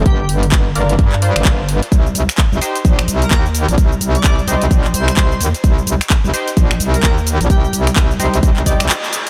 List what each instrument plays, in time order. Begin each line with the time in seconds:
0.06 wobble bass G1, digital synth lead G4, kick, closed hi-hat
0.20 digital synth lead G4
0.29 wobble bass G1, open hi-hat
0.43 closed hi-hat
0.52 kick, clap, closed hi-hat
0.75 wobble bass G1, synth stab D4 F4 A#4, open hi-hat
0.89 closed hi-hat
0.99 wobble bass G2, kick, closed hi-hat
1.12 clap
1.22 synth stab D4 F4 C5, open hi-hat
1.36 wobble bass G1, finger snap, closed hi-hat
1.45 wobble bass G1, kick, clap, closed hi-hat
1.69 open hi-hat
1.83 closed hi-hat
1.92 wobble bass C2, kick, closed hi-hat, shaker
2.06 shaker
2.15 wobble bass C2, open hi-hat, shaker
2.29 finger snap, closed hi-hat, shaker
2.38 kick, clap, closed hi-hat, shaker
2.52 wobble bass C2, shaker
2.61 synth stab D#4 G4 C5, open hi-hat, shaker
2.75 closed hi-hat, shaker
2.85 wobble bass A#1, kick, closed hi-hat, shaker
2.99 finger snap, shaker
3.08 wobble bass C2, open hi-hat, shaker
3.22 digital synth lead A#4, closed hi-hat, shaker
3.31 wobble bass D#2, digital synth lead A#4, kick, clap, closed hi-hat, shaker
3.46 shaker
3.55 open hi-hat, shaker
3.69 wobble bass A#1, closed hi-hat, shaker
3.78 wobble bass C2, kick, closed hi-hat, shaker
3.92 shaker
4.01 wobble bass C2, open hi-hat, shaker
4.15 digital synth lead D5, closed hi-hat, shaker
4.24 kick, clap, closed hi-hat, shaker
4.39 shaker
4.48 wobble bass C2, synth stab D#4 G4 C5, open hi-hat, shaker
4.62 closed hi-hat, shaker
4.71 wobble bass A#1, kick, closed hi-hat, shaker
4.84 clap, shaker
4.94 wobble bass C2, digital synth lead C5, open hi-hat, shaker
5.08 finger snap, closed hi-hat, shaker
5.17 wobble bass C2, kick, clap, closed hi-hat, shaker
5.32 shaker
5.41 wobble bass D#2, open hi-hat, shaker
5.55 closed hi-hat, shaker
5.64 wobble bass C2, kick, closed hi-hat, shaker
5.78 shaker
5.87 wobble bass C2, open hi-hat, shaker
6.01 finger snap, closed hi-hat, shaker
6.10 kick, clap, closed hi-hat, shaker
6.24 wobble bass C2, shaker
6.34 synth stab D#4 G4 C5, open hi-hat, shaker
6.48 closed hi-hat, shaker
6.57 wobble bass A#1, kick, closed hi-hat, shaker
6.71 finger snap, shaker
6.80 wobble bass C2, open hi-hat, shaker
6.94 digital synth lead A#4, closed hi-hat, shaker
7.03 wobble bass D#2, digital synth lead A#4, kick, clap, closed hi-hat, shaker
7.18 shaker
7.27 open hi-hat, shaker
7.41 wobble bass A#1, closed hi-hat, shaker
7.50 wobble bass C2, digital synth lead G4, kick, closed hi-hat, shaker
7.64 digital synth lead G4, shaker
7.73 wobble bass C2, open hi-hat, shaker
7.87 finger snap, closed hi-hat, shaker
7.96 kick, clap, closed hi-hat, shaker
8.11 shaker
8.20 wobble bass C2, synth stab D#4 G4 C5, open hi-hat, shaker
8.34 closed hi-hat, shaker
8.43 wobble bass C2, kick, closed hi-hat, shaker
8.57 clap, shaker
8.66 synth stab D#4 G4 D5, kick, open hi-hat, shaker
8.80 wobble bass C2, finger snap, closed hi-hat, shaker
8.89 clap, closed hi-hat, shaker
9.04 shaker
9.13 open hi-hat, shaker
9.27 closed hi-hat